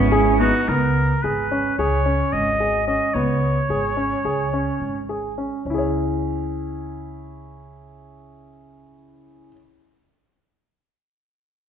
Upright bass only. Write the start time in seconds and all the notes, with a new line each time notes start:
Already playing: G#1
0.68 C#2
1.24 G#1
1.78 C#2
2.33 G#1
3.14 C#2
3.69 G#1
4.24 C#2
4.80 G#1
5.65 C#2